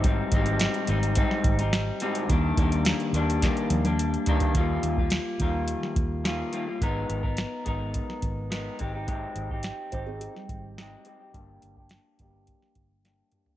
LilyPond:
<<
  \new Staff \with { instrumentName = "Kalimba" } { \time 4/4 \key ees \major \tempo 4 = 106 r1 | r1 | r1 | r1 |
r4. <ees' c''>16 <c' aes'>16 g'16 <g ees'>4. r16 | r1 | }
  \new Staff \with { instrumentName = "Clean electric guitar" } { \time 4/4 \key ees \major <aes, g c' ees'>8 <aes, g c' ees'>4 <aes, g c' ees'>8 <aes, g c' ees'>8. <g c' ees'>8. <aes, g c' ees'>8 | <ees g bes d'>8 <ees g bes d'>4 <ees g bes d'>8 <ees g bes d'>8. <g bes d'>8. <ees g bes d'>8 | <ees g bes f'>8. <g bes f'>8. <ees g bes f'>4. <ees g bes f'>8 <ees g bes f'>16 <g bes f'>16 | <aes ces' ees' bes'>8. <ces' ees' bes'>8. <aes ces' ees' bes'>4. <aes ces' ees' bes'>8 <aes c' ees' g'>16 <c' ees' g'>16 |
<aes c' ees' g'>8. <c' ees' g'>8. <c' ees' g'>4. <aes c' ees' g'>8 <aes c' ees' g'>16 <c' ees' g'>16 | <g bes d' g'>8. <bes d' g'>8. <g bes d' g'>4. <g bes d' g'>8 <g bes d' g'>16 <bes d' g'>16 | }
  \new Staff \with { instrumentName = "Fingered electric bass" } { \clef bass \time 4/4 \key ees \major aes,,8 aes,,8. r16 aes,,8. r16 aes,,4 r8 | ees,8 ees,8. r16 ees,8. r16 ees,4 r8 | ees,8 ees,8. r16 ees,8. r16 ees,4 r8 | aes,,8 aes,,8. r16 aes,,8. r16 aes,,4 aes,,8~ |
aes,,8 aes,,8. r16 aes,,8. r16 aes,,4 r8 | g,,8 g,,8. r16 g,,8. r16 g,,4 r8 | }
  \new DrumStaff \with { instrumentName = "Drums" } \drummode { \time 4/4 <hh bd>8 <hh bd>16 hh16 <hh sn>16 hh16 hh16 hh16 <hh bd>16 sn16 <hh bd>16 hh16 <hh sn>8 hh16 hh16 | <hh bd>8 <hh bd>16 hh16 <hh sn>16 hh16 hh16 hh16 <hh bd sn>16 hh16 <hh tommh>16 <hh tommh>16 hh16 hh16 <hh tomfh>16 <hh tomfh>16 | <hh bd>8 hh16 bd16 <hh sn>8 <hh bd>8 hh16 sn16 <hh bd>8 <hh sn>8 hh8 | <hh bd>8 hh16 bd16 <hh sn>8 <hh bd>8 <hh bd>16 sn16 <hh bd>8 <hh sn>8 <hh bd>8 |
<hh bd>8 hh16 bd16 <hh sn>8 <hh bd>8 hh16 sn16 <hh bd>8 <hh sn>8 hh8 | <hh bd>8 hh16 bd16 <hh sn>8 <hh bd>8 <hh bd>16 sn16 <hh bd>8 <hh sn>8 <hh toml>16 tomfh16 | }
>>